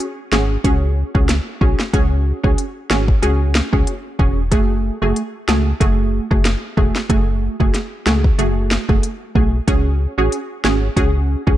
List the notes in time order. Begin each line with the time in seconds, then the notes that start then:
0.00 closed hi-hat
0.32 G#1 C#4 F#4 G#4, snare
0.64 C#2 C#4 F#4 G#4, kick, closed hi-hat
1.15 C#2 C#4 F#4 G#4, kick
1.29 snare, closed hi-hat
1.61 B1 C#4 F#4 G#4, kick
1.79 snare
1.93 C#2 C#4 F#4 G#4, kick, closed hi-hat
2.44 C#2 C#4 F#4 G#4, kick
2.58 closed hi-hat
2.90 G#1 C#4 F#4 G#4, snare
3.08 kick
3.22 C#2 C#4 F#4 G#4, closed hi-hat
3.55 snare
3.73 C#2 C#4 F#4 G#4, kick
3.87 closed hi-hat
4.19 E1 C#4 F#4 G#4, kick
4.51 F#1 A3 F#4 G#4, kick, closed hi-hat
5.02 F#1 A3 F#4 G#4
5.16 closed hi-hat
5.48 C#2 A3 F#4 G#4, snare
5.80 F#1 A3 F#4 G#4, kick, closed hi-hat
6.31 F#1 A3 F#4 G#4, kick
6.45 snare, closed hi-hat
6.77 E1 A3 F#4 G#4, kick
6.96 snare
7.09 F#1 A3 F#4 G#4, kick, closed hi-hat
7.60 F#1 A3 F#4 G#4, kick
7.74 snare, closed hi-hat
8.06 C#2 A3 F#4 G#4, snare
8.24 kick
8.38 F#1 A3 F#4 G#4, closed hi-hat
8.71 snare
8.89 F#1 A3 F#4 G#4, kick
9.03 closed hi-hat
9.35 B1 A3 F#4 G#4, kick
9.67 C#2 C#4 F#4 G#4, kick, closed hi-hat
10.18 A1 C#4 F#4 G#4
10.32 closed hi-hat
10.64 G#1 C#4 F#4 G#4, snare
10.96 C#2 C#4 F#4 G#4, kick, closed hi-hat
11.47 C#2 C#4 F#4 G#4, kick